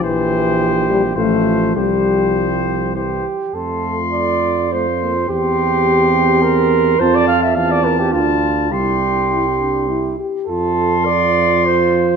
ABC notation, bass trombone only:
X:1
M:3/4
L:1/8
Q:1/4=103
K:F
V:1 name="Bass trombone" clef=bass
B,,,4 A,,,2 | C,,4- C,, z | F,,6 | E,,6 |
F,,2 E,,2 D,,2 | C,,4- C,, z | F,,6 |]